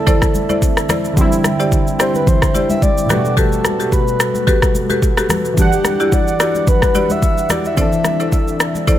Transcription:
Already playing: synth keys D3 A3 C4 E4, glass harmonica C4 A4 D5 E5, soft synth lead A4
0.07 marimba E4 A4 C5 D5, kick, low conga, shaker
0.22 kick, cross-stick, shaker
0.35 high conga, shaker
0.49 marimba E4 A4 C5 D5, high conga, shaker
0.62 kick, shaker
0.77 cross-stick, shaker
0.89 marimba E4 A4 C5 D5, cross-stick, high conga, low conga, shaker
1.05 shaker
1.13 synth keys D3 G3, glass harmonica D4 C5 G5, kick, low conga, shaker
1.19 synth keys C4 E4
1.32 shaker
1.44 cross-stick, high conga, shaker
1.60 marimba E4 G4 C5 D5, shaker
1.72 kick, shaker
1.87 shaker
1.99 marimba E4 G4 C5 D5, soft synth lead C5, cross-stick, shaker
2.15 soft synth lead B4, high conga, shaker
2.27 soft synth lead C5, kick, low conga, shaker
2.42 kick, cross-stick, shaker
2.54 marimba E4 G4 C5 D5, high conga, shaker
2.70 soft synth lead E5, high conga, shaker
2.82 soft synth lead D5, kick, shaker
2.98 shaker
3.06 synth keys A2 G3, glass harmonica G3 F#4 A4 B4, marimba F#4 G4 A4 B4, high conga, low conga, shaker
3.10 synth keys B2 A3 F#4, cross-stick
3.25 shaker
3.37 marimba F#4 G4 A4 B4, soft synth lead A4, kick, low conga, shaker
3.52 shaker
3.65 cross-stick, high conga, shaker
3.80 marimba F#4 G4 A4 B4, shaker
3.92 soft synth lead B4, kick, shaker
4.08 shaker
4.20 cross-stick, shaker
4.35 high conga, shaker
4.47 marimba F#4 G4 A4 B4, kick, low conga, shaker
4.62 kick, cross-stick, shaker
4.75 high conga, shaker
4.90 marimba F#4 G4 A4 B4, high conga, shaker
5.02 kick, shaker
5.17 marimba F#4 G4 A4 B4, cross-stick, shaker
5.29 cross-stick, high conga, low conga, shaker
5.45 shaker
5.54 synth keys E3 G3, glass harmonica E4 G4 D5 F#5, kick, low conga, shaker
5.58 synth keys D4 F#5, soft synth lead G4
5.73 soft synth lead G4, shaker
5.85 cross-stick, high conga, shaker
6.00 marimba E4 F#4 G4 D5, shaker
6.12 soft synth lead D5, kick, shaker
6.28 shaker
6.40 marimba E4 F#4 G4 D5, cross-stick, shaker
6.55 high conga, shaker
6.67 soft synth lead B4, kick, low conga, shaker
6.82 kick, cross-stick, shaker
6.95 marimba E4 F#4 G4 D5, high conga, shaker
7.10 soft synth lead E5, high conga, shaker
7.22 kick, shaker
7.38 shaker
7.50 marimba E4 F#4 G4 D5, soft synth lead D5, cross-stick, high conga, low conga, shaker
7.65 soft synth lead E5, shaker
7.74 synth keys D#3 C4, glass harmonica C4 A4 E5, marimba E4 A4 C5 D5, kick, low conga, shaker
7.79 synth keys E3 D4 A4
7.92 shaker
8.04 cross-stick, high conga, shaker
8.20 marimba E4 A4 C5 D5, shaker
8.32 kick, shaker
8.48 shaker
8.60 cross-stick, shaker
8.75 high conga, shaker
8.87 marimba E4 A4 C5 D5, kick, low conga, shaker

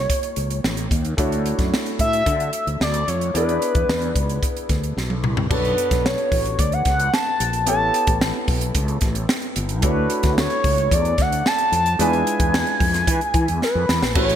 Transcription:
Already playing: grand piano A#3 D#4 F4 G4 C#5, analog synth lead C#5
0.10 kick, closed hi-hat
0.23 closed hi-hat
0.36 fretless electric bass C#2, closed hi-hat
0.50 closed hi-hat
0.64 fretless electric bass A1, snare
0.77 closed hi-hat
0.91 fretless electric bass D#2, kick, closed hi-hat
1.05 closed hi-hat
1.17 fretless electric bass D2, grand piano A3 D4 E4 F#4 C#5, kick, closed hi-hat
1.32 closed hi-hat
1.46 closed hi-hat
1.59 fretless electric bass F#2, kick, snare, closed hi-hat
1.74 snare
1.86 closed hi-hat
1.99 fretless electric bass A2, analog synth lead E5, kick, closed hi-hat
2.13 closed hi-hat
2.26 fretless electric bass D3, kick, closed hi-hat
2.40 closed hi-hat
2.53 analog synth lead E5, closed hi-hat
2.67 fretless electric bass D2, closed hi-hat
2.80 fretless electric bass D2, analog synth lead D5, snare
2.94 closed hi-hat
3.08 fretless electric bass F2, analog synth lead C#5, closed hi-hat
3.21 closed hi-hat
3.34 fretless electric bass E2, grand piano B3 D4 E4 G#4 D5, analog synth lead B4, closed hi-hat
3.49 closed hi-hat
3.62 closed hi-hat
3.75 fretless electric bass E2, kick, closed hi-hat
3.88 fretless electric bass E2, snare
4.02 closed hi-hat
4.15 fretless electric bass C#2, kick, closed hi-hat
4.29 closed hi-hat
4.43 kick, closed hi-hat
4.57 closed hi-hat
4.69 fretless electric bass D2, kick, snare, closed hi-hat
4.84 closed hi-hat
4.97 fretless electric bass B1, snare
5.10 high tom
5.24 fretless electric bass C2, mid tom
5.37 floor tom
5.50 fretless electric bass B1, grand piano B3 D4 F#4 A4 C#5, analog synth lead B4, kick, crash
5.65 closed hi-hat
5.78 closed hi-hat
5.91 fretless electric bass B1, kick, snare, closed hi-hat
6.06 analog synth lead C#5, snare
6.18 closed hi-hat
6.32 fretless electric bass A1, kick, open hi-hat
6.45 closed hi-hat
6.59 fretless electric bass D2, analog synth lead D5, kick, closed hi-hat
6.72 analog synth lead F#5, closed hi-hat
6.85 fretless electric bass C#2, analog synth lead F#5, kick, snare, closed hi-hat
7.00 closed hi-hat
7.13 analog synth lead A5, snare
7.40 fretless electric bass A#1, closed hi-hat
7.53 closed hi-hat
7.66 fretless electric bass A1, grand piano B3 E4 G4 A4 C#5, analog synth lead A5, closed hi-hat
7.94 closed hi-hat
8.07 fretless electric bass A1, kick, closed hi-hat
8.21 snare
8.48 fretless electric bass B1, kick, open hi-hat
8.61 closed hi-hat
8.75 fretless electric bass C#2, kick, closed hi-hat
8.88 closed hi-hat
9.01 fretless electric bass A1, kick, snare, closed hi-hat
9.15 closed hi-hat
9.29 snare
9.42 closed hi-hat
9.56 fretless electric bass G1, closed hi-hat
9.69 closed hi-hat
9.82 fretless electric bass D2, grand piano A3 D4 E4 F#4 C#5, analog synth lead B4, kick, closed hi-hat
10.10 closed hi-hat
10.23 fretless electric bass D2, kick, snare, closed hi-hat
10.38 analog synth lead C#5, snare
10.50 closed hi-hat
10.64 fretless electric bass C#2, kick, open hi-hat
10.78 closed hi-hat
10.91 fretless electric bass E2, analog synth lead D5, kick, closed hi-hat
11.05 closed hi-hat
11.18 fretless electric bass D2, analog synth lead F#5, kick, snare, closed hi-hat
11.32 closed hi-hat
11.46 analog synth lead A5, snare
11.58 closed hi-hat
11.72 fretless electric bass F2, analog synth lead A5, closed hi-hat
11.86 closed hi-hat
11.99 fretless electric bass E2, grand piano G#3 D4 E4 F4 B4, analog synth lead G#5, closed hi-hat
12.13 closed hi-hat
12.27 closed hi-hat
12.40 fretless electric bass E2, kick, closed hi-hat
12.54 snare
12.67 closed hi-hat
12.80 fretless electric bass F2, kick, open hi-hat
12.94 snare, closed hi-hat
13.07 fretless electric bass E3, kick, closed hi-hat
13.21 closed hi-hat
13.34 fretless electric bass E3, kick, closed hi-hat
13.48 fretless electric bass E2, closed hi-hat
13.62 analog synth lead B4, snare
13.75 fretless electric bass F2
13.89 fretless electric bass E2, snare
14.02 fretless electric bass A#1, snare
14.15 fretless electric bass A1, grand piano A3 C#4 E4 F#4 B4, analog synth lead C#5, kick, crash
14.29 closed hi-hat

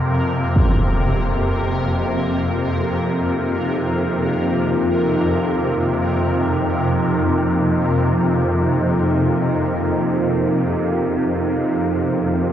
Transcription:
Already playing: synth drone F2 C3, synth texture A#3 A#4
0.56 ambient pad F3, impact
1.01 ambient pad A#4
1.42 ambient pad F5
1.60 ambient pad D#4
9.54 ambient pad C5

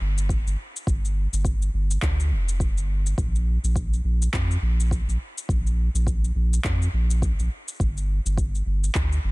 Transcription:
0.01 sub bass G1
0.18 shaker
0.29 kick, shaker
0.46 sub bass G1, shaker
0.76 shaker
0.87 sub bass G1, kick, shaker
1.05 shaker
1.33 sub bass G1, shaker
1.45 kick, shaker
1.62 shaker
1.74 sub bass G1
1.91 shaker
2.02 sub bass D2, kick, clap, shaker
2.20 shaker
2.31 sub bass F1
2.49 shaker
2.60 kick, shaker
2.77 sub bass G1, shaker
3.06 shaker
3.18 sub bass A#1, kick, shaker
3.35 shaker
3.64 sub bass A#1, shaker
3.76 kick, shaker
3.93 shaker
4.04 sub bass A#1
4.22 shaker
4.33 sub bass F2, kick, clap, shaker
4.51 shaker
4.62 sub bass A#1
4.80 shaker
4.91 kick, shaker
5.07 sub bass A#1, shaker
5.38 shaker
5.49 sub bass A#1, kick, shaker
5.67 shaker
5.94 sub bass A#1, shaker
6.07 kick, shaker
6.24 shaker
6.35 sub bass A#1
6.53 shaker
6.64 sub bass F2, kick, clap, shaker
6.82 shaker
6.93 sub bass A#1
7.11 shaker
7.22 kick, shaker
7.39 sub bass A#1, shaker
7.68 shaker
7.80 sub bass G1, kick, shaker
7.97 shaker
8.25 sub bass G1, shaker
8.38 kick, shaker
8.55 shaker
8.66 sub bass G1
8.84 shaker
8.95 sub bass D2, kick, clap, shaker
9.12 shaker
9.24 sub bass G1

